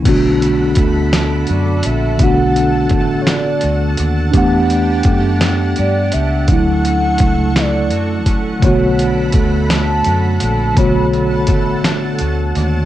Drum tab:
CC |x-----|------|------|------|
HH |xxxxxx|xxxxxx|xxxxxx|xxxxxx|
SD |---o--|---o--|---o--|---o--|
BD |o-o---|o-o---|o-o---|o-o--o|

CC |------|------|
HH |xxxxxx|xxxxxx|
SD |---o--|---o--|
BD |o-o---|o-o---|